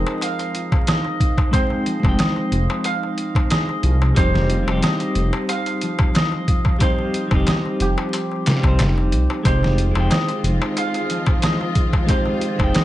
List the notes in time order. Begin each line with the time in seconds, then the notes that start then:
Already playing: F3 G#3 C4 D#4 F4 G#4 A#4 C5 D#5 G5
0.07 darbuka tek
0.21 F5, closed hi-hat, darbuka tek
0.39 closed hi-hat, darbuka tek
0.55 F4, closed hi-hat
0.72 kick, darbuka tek
0.87 D#4 D#5, snare, closed hi-hat, darbuka tek
1.05 darbuka tek
1.20 kick, closed hi-hat
1.38 kick, darbuka tek
1.51 G#3 C4 D#4 G#4 C5, kick, closed hi-hat, darbuka tek
1.56 G5
1.70 darbuka tek
1.86 F3, closed hi-hat
2.00 F1 G#3 C4, kick
2.05 D#4, darbuka tek
2.09 G5
2.19 D#5, snare, closed hi-hat, darbuka tek
2.36 darbuka tek
2.52 F1 F4, closed hi-hat
2.70 darbuka tek
2.84 D#4 F5, closed hi-hat, darbuka tek
3.03 darbuka tek
3.18 closed hi-hat
3.35 kick, darbuka tek
3.50 G#4 D#5, snare, closed hi-hat, darbuka tek
3.69 darbuka tek
3.83 C2 F3, closed hi-hat
4.02 darbuka tek
4.15 F1 G3 C4 D#4 C5, kick, closed hi-hat, darbuka tek
4.19 G4
4.34 snare, darbuka tek
4.50 F4, closed hi-hat
4.63 G3 C4
4.67 F1 D#4, darbuka tek
4.72 G4
4.83 D#4 D#5, snare, closed hi-hat, darbuka tek
5.00 closed hi-hat, darbuka tek
5.15 F1, closed hi-hat
5.33 darbuka tek
5.49 G4 F5, closed hi-hat, darbuka tek
5.66 closed hi-hat, darbuka tek
5.81 F3, closed hi-hat
5.99 kick, darbuka tek
6.15 D#5, snare, closed hi-hat, darbuka tek
6.32 darbuka tek
6.48 F4, kick, closed hi-hat
6.65 kick, darbuka tek
6.79 G3 C4 D#4 C5, kick, closed hi-hat, darbuka tek
6.83 G4
6.99 darbuka tek
7.14 closed hi-hat
7.28 F1 G3 C4, kick, darbuka tek
7.34 D#4 G4
7.47 G4 D#5, snare, closed hi-hat, darbuka tek
7.66 darbuka tek
7.80 F1 F3 G4, closed hi-hat
7.98 darbuka tek
8.13 closed hi-hat, darbuka tek
8.32 darbuka tek
8.46 F4, snare, closed hi-hat
8.59 C2 G3 C4
8.64 D#4, kick, darbuka tek
8.68 C5
8.79 F1 D#4, snare, closed hi-hat, darbuka tek
8.98 darbuka tek
9.12 C2, closed hi-hat
9.30 darbuka tek
9.43 F1 D#3 G#3 C4 D#4 F4 C5, kick, closed hi-hat, darbuka tek
9.48 G4
9.63 snare, darbuka tek
9.78 F4, closed hi-hat
9.91 G#3 C4
9.95 F1 D#4, darbuka tek
10.00 G5
10.11 D#4 D#5, snare, closed hi-hat, darbuka tek
10.29 closed hi-hat, darbuka tek
10.44 F1, closed hi-hat
10.62 darbuka tek
10.77 G#4 F5, closed hi-hat, darbuka tek
10.94 closed hi-hat, darbuka tek
11.10 F3, closed hi-hat
11.26 kick, darbuka tek
11.42 D#5, snare, closed hi-hat, darbuka tek
11.61 darbuka tek
11.75 F4, kick, closed hi-hat
11.93 kick, darbuka tek
12.06 G#3 C4 D#4 C5, kick, closed hi-hat, darbuka tek
12.11 G4
12.26 darbuka tek
12.41 closed hi-hat
12.55 F1 G#3 C4, kick
12.60 D#4, darbuka tek
12.64 G5
12.75 G#4 D#5, snare, closed hi-hat, darbuka tek